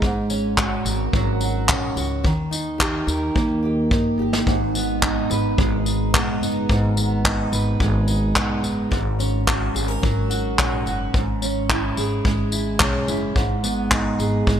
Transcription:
0.00 0.81 G#1 medium
0.00 2.25 G#2 medium
0.00 0.61 G#3 medium
0.00 0.61 G#4 medium
0.00 kick loud
0.30 1.69 C#4 medium
0.30 tambourine medium
0.58 1.41 F#4 medium
0.58 kick loud
0.58 clap medium
0.85 1.11 G#1 medium
0.85 3.07 A#4 medium
0.85 tambourine medium
1.13 1.65 G#1 loud
1.13 2.30 F#3 medium
1.13 kick loud
1.41 1.96 F#4 medium
1.41 tambourine medium
1.69 1.95 A#1 medium
1.69 2.31 C#4 medium
1.69 kick loud
1.69 clap loud
1.96 2.22 C#2 medium
1.96 2.30 F#4 medium
1.96 tambourine medium
2.24 3.04 D#2 loud
2.24 5.74 D#3 medium
2.24 kick loud
2.51 3.91 D#4 medium
2.51 tambourine medium
2.78 3.61 G4 medium
2.78 kick medium
2.78 clap loud
3.07 3.33 D#2 medium
3.07 4.52 A#4 medium
3.07 tambourine medium
3.35 3.87 D#2 loud
3.35 4.52 A#3 medium
3.35 kick loud
3.63 4.18 G4 medium
3.91 4.17 G2 medium
3.91 4.75 D#4 medium
3.91 kick loud
4.18 4.44 G1 medium
4.18 4.52 G4 medium
4.33 snare medium
4.47 5.26 G#1 loud
4.47 6.68 G#2 medium
4.47 kick loud
4.75 6.14 B3 medium
4.75 tambourine medium
5.02 5.84 D#4 medium
5.02 kick loud
5.02 clap loud
5.30 5.56 G#1 loud
5.30 7.51 B4 medium
5.30 tambourine medium
5.58 6.10 G#1 loud
5.58 7.80 G#3 medium
5.58 kick loud
5.85 6.41 D#4 medium
5.85 tambourine medium
6.14 6.39 A#1 medium
6.14 6.96 B3 medium
6.14 kick loud
6.14 clap loud
6.41 6.67 F#1 medium
6.41 7.24 D#4 medium
6.41 tambourine medium
6.69 7.49 G#1 loud
6.69 8.89 G#2 medium
6.69 kick loud
6.97 8.35 B3 medium
6.97 tambourine medium
7.25 8.06 D#4 medium
7.25 kick loud
7.25 clap loud
7.52 7.78 G#1 medium
7.52 8.97 B4 medium
7.52 tambourine medium
7.80 8.32 G#1 loud
7.80 9.50 G#3 medium
7.80 kick loud
8.08 8.62 D#4 medium
8.08 tambourine medium
8.36 8.97 B3 medium
8.36 kick loud
8.36 clap loud
8.63 8.89 F#1 medium
8.63 8.97 D#4 medium
8.63 tambourine medium
8.91 9.71 G#1 loud
8.91 11.14 G#2 medium
8.91 kick loud
9.19 10.58 C#4 medium
9.19 tambourine medium
9.47 10.29 F#4 medium
9.47 kick loud
9.47 clap loud
9.74 10.00 G#1 loud
9.74 9.88 G#4 medium
9.74 tambourine medium
9.88 11.19 A#4 medium
10.02 10.54 G#1 loud
10.02 11.19 F#3 medium
10.02 kick loud
10.30 10.85 F#4 medium
10.30 tambourine medium
10.58 10.84 A#1 medium
10.58 11.42 C#4 medium
10.58 kick loud
10.58 clap loud
10.86 11.12 F#1 medium
10.86 11.19 F#4 medium
10.86 tambourine medium
11.14 11.93 G#1 loud
11.14 13.34 G#2 medium
11.14 kick loud
11.42 12.80 C#4 medium
11.42 tambourine medium
11.70 12.51 E4 medium
11.70 kick loud
11.70 clap loud
11.97 12.23 G#1 medium
11.97 14.19 G#4 medium
11.97 tambourine medium
12.25 12.77 G#1 loud
12.25 14.47 G#3 medium
12.25 kick loud
12.52 13.07 E4 medium
12.52 tambourine medium
12.80 13.06 B1 medium
12.80 13.42 C#4 medium
12.80 kick loud
12.80 clap loud
13.08 13.34 F#1 medium
13.08 13.42 E4 medium
13.08 tambourine medium
13.36 14.15 G#1 medium
13.36 14.60 G#2 medium
13.36 kick loud
13.64 14.60 B3 medium
13.64 tambourine medium
13.91 14.60 D#4 medium
13.91 kick loud
13.91 clap loud
14.19 14.45 G#1 loud
14.19 14.60 G#4 medium
14.19 tambourine medium
14.47 14.60 G#1 loud
14.47 14.60 G#3 medium
14.47 kick loud

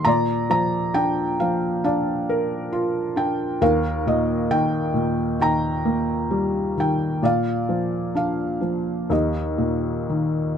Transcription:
0.05 3.57 A#2 medium
0.05 1.82 D5 medium
0.05 0.49 A#5 medium
0.50 1.39 F3 soft
0.50 0.93 A#5 medium
0.94 1.83 D4 soft
0.94 1.37 G5 medium
1.40 3.13 F3 soft
1.40 1.81 F5 medium
1.84 3.15 D4 medium
1.84 3.57 D5 soft
1.84 2.69 F5 medium
2.29 3.57 A#4 medium
2.73 3.58 F4 medium
3.16 3.59 D4 medium
3.16 3.58 G5 medium
3.61 7.19 D#2 medium
3.61 5.37 A#4 medium
3.61 4.07 F5 medium
4.06 4.92 A#2 soft
4.06 4.53 D#5 medium
4.51 5.38 D#3 soft
4.51 5.40 G5 medium
4.94 6.72 A#2 soft
5.39 6.76 D#3 medium
5.39 6.79 G5 medium
5.39 6.74 A#5 medium
5.85 7.18 A#3 medium
6.31 7.20 G3 medium
6.77 7.22 D#3 soft
6.77 7.26 G5 medium
7.22 9.06 A#2 medium
7.22 9.06 D5 medium
7.22 8.15 F5 medium
7.69 8.60 F3 soft
8.15 9.07 D4 soft
8.15 9.13 F5 medium
8.61 9.08 F3 soft
9.10 10.58 D#2 medium
9.10 10.58 G4 soft
9.10 10.58 D#5 medium
9.58 10.58 A#2 soft
10.10 10.58 D#3 soft

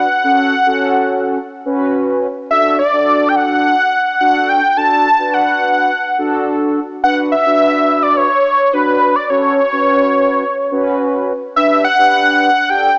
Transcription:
0.00 1.62 F#5 loud
0.24 0.55 C#4 medium
0.24 0.55 F#4 medium
0.24 0.55 A4 medium
0.66 1.38 C#4 medium
0.66 1.38 F#4 medium
0.66 1.38 A4 loud
1.66 2.27 C#4 medium
1.66 2.27 F#4 medium
1.66 2.27 B4 loud
2.50 2.81 D4 medium
2.50 2.81 F#4 medium
2.50 2.81 A4 medium
2.50 2.77 E5 medium
2.79 3.30 D5 medium
2.93 3.75 D4 medium
2.93 3.75 F#4 medium
2.93 3.75 A4 medium
3.28 3.37 G5 medium
3.36 4.20 F#5 loud
4.20 4.61 D4 medium
4.20 4.61 F#4 medium
4.20 4.61 A4 medium
4.20 4.50 F#5 loud
4.49 4.78 G5 loud
4.77 5.08 D4 medium
4.77 5.08 F#4 medium
4.77 5.08 A4 medium
4.77 5.35 A5 loud
5.19 5.91 D4 medium
5.19 5.91 F#4 medium
5.19 5.91 B4 medium
5.34 6.75 F#5 loud
6.18 6.80 D4 medium
6.18 6.80 F#4 medium
6.18 6.80 A4 loud
7.03 7.34 D4 medium
7.03 7.34 F#4 medium
7.03 7.34 B4 medium
7.03 7.16 F#5 loud
7.32 8.04 E5 loud
7.46 8.28 D4 medium
7.46 8.28 F#4 medium
7.46 8.28 B4 medium
8.03 8.18 D5 loud
8.17 8.75 C#5 loud
8.73 9.14 D4 medium
8.73 9.14 F#4 medium
8.73 9.14 B4 medium
8.73 9.17 B4 medium
9.16 9.29 D5 medium
9.30 9.60 C#4 medium
9.30 9.60 F#4 medium
9.30 9.60 A4 medium
9.30 11.24 C#5 loud
9.72 10.44 C#4 medium
9.72 10.44 F#4 medium
9.72 10.44 B4 medium
10.71 11.33 C#4 medium
10.71 11.33 F#4 medium
10.71 11.33 B4 loud
11.56 11.87 D4 medium
11.56 11.87 G4 medium
11.56 11.87 B4 medium
11.56 11.83 E5 loud
11.85 12.71 F#5 loud
11.99 12.50 D4 medium
11.99 12.50 G4 medium
11.99 12.50 B4 medium
12.69 12.90 D4 medium
12.69 12.90 G4 medium
12.69 12.90 A4 medium
12.69 12.97 G5 loud

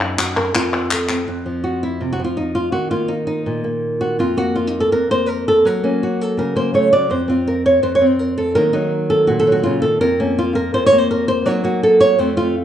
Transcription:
0.00 0.53 F#2 medium
0.00 0.37 D#4 loud
0.00 0.18 F4 medium
0.18 0.36 F#4 loud
0.18 clap medium
0.37 0.55 A#4 loud
0.37 clap soft
0.55 1.27 F2 medium
0.55 0.92 F4 medium
0.55 clap medium
0.73 clap soft
0.91 1.26 A4 medium
0.91 clap medium
1.09 1.83 C4 soft
1.09 clap medium
1.28 2.73 F2 medium
1.46 2.18 F3 medium
1.64 1.82 F#4 medium
1.83 2.01 E4 medium
2.00 2.19 C3 medium
2.00 2.12 F4 medium
2.13 2.24 F#4 loud
2.19 2.71 F3 medium
2.24 2.37 F4 medium
2.37 2.55 D#4 medium
2.55 2.72 F4 medium
2.72 4.19 D#3 medium
2.72 2.90 F#4 medium
2.91 3.64 A#3 medium
2.91 3.09 F4 medium
3.08 3.26 D#4 medium
3.27 3.64 D#4 medium
3.46 4.19 A#2 medium
3.64 4.37 A#3 medium
4.01 4.19 F#4 loud
4.19 4.91 F2 medium
4.19 4.38 F4 medium
4.37 5.10 A#3 medium
4.37 4.56 F#4 loud
4.56 4.68 F4 medium
4.67 4.80 D#4 medium
4.80 4.92 A4 medium
4.92 5.65 F2 medium
4.92 5.10 A#4 medium
5.11 5.83 A#3 medium
5.11 5.29 C5 loud
5.29 5.47 A#4 medium
5.48 5.66 A4 loud
5.65 6.91 F#3 medium
5.65 5.84 A#4 loud
5.84 6.55 A#3 medium
5.84 6.02 C#4 medium
6.03 6.21 F#4 medium
6.21 6.39 A4 loud
6.37 7.08 C#3 medium
6.37 6.56 A#4 medium
6.56 6.73 A#3 medium
6.56 6.74 C5 medium
6.74 6.92 A3 medium
6.74 6.92 C#5 medium
6.92 7.11 F#3 medium
6.92 7.11 D5 loud
7.10 7.81 F2 medium
7.10 7.29 C5 medium
7.28 8.00 C4 medium
7.28 7.47 F4 medium
7.48 7.65 A#4 medium
7.66 7.83 C#5 loud
7.83 8.56 F2 medium
7.83 7.95 C5 medium
7.95 8.07 C#5 loud
8.01 8.54 C4 medium
8.07 8.19 C5 medium
8.19 8.37 A#4 medium
8.38 8.56 A4 loud
8.55 9.65 D#3 medium
8.55 8.73 F#3 soft
8.55 10.19 A#3 medium
8.55 8.72 D#4 soft
8.55 8.74 A#4 loud
8.73 9.46 F#3 medium
8.73 8.92 D#4 loud
9.10 9.28 A4 loud
9.27 9.99 A#2 medium
9.27 9.40 F#4 medium
9.40 9.52 A4 loud
9.47 9.83 F#3 medium
9.52 9.65 F#4 medium
9.63 9.83 C#3 medium
9.63 9.81 F4 medium
9.82 10.01 D#3 medium
9.82 10.00 A4 loud
10.01 10.73 F2 medium
10.01 10.19 A#4 loud
10.20 10.91 A#3 medium
10.20 10.38 C#4 medium
10.39 10.55 F4 medium
10.55 10.73 A#4 loud
10.74 11.46 F2 medium
10.74 10.86 C5 loud
10.86 10.99 C#5 loud
10.92 11.44 A#3 medium
10.99 11.10 C5 loud
11.11 11.28 A#4 medium
11.28 11.46 C5 loud
11.46 12.16 F#3 medium
11.46 11.63 A#3 medium
11.46 12.17 D#4 medium
11.46 11.63 F#4 medium
11.46 11.64 C#5 loud
11.64 12.16 A#3 medium
11.64 11.82 F#4 medium
11.83 12.01 A4 loud
12.01 12.19 C#5 loud
12.19 12.64 F2 medium
12.19 12.35 A3 medium
12.19 12.64 C4 medium
12.19 12.37 C5 loud
12.37 12.64 A3 medium
12.37 12.55 F4 loud

